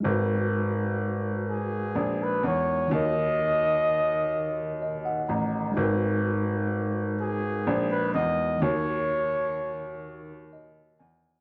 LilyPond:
<<
  \new Staff \with { instrumentName = "Flugelhorn" } { \time 6/8 \key gis \minor \tempo 4. = 42 r4. gis'8. b'16 cis''8 | dis''2~ dis''8 r8 | r4. gis'8. b'16 dis''8 | cis''2 r4 | }
  \new Staff \with { instrumentName = "Tine electric piano" } { \time 6/8 \key gis \minor << { r2. | r2 dis''16 fis''16 ais''8 | r2. | r2 dis''8 gis''8 | } \\ { <gis dis' fis' ais' b'>2. | <dis dis' fis' ais' cis''>2. | <gis dis' fis' ais' b'>2. | <dis dis' fis' ais' cis''>2. | } >> }
  \new Staff \with { instrumentName = "Grand piano" } { \clef bass \time 6/8 \key gis \minor gis,,2 ais,,8 e,8 | dis,2~ dis,8 a,,8 | gis,,2 ais,,8 e,8 | dis,2~ dis,8 e,8 | }
>>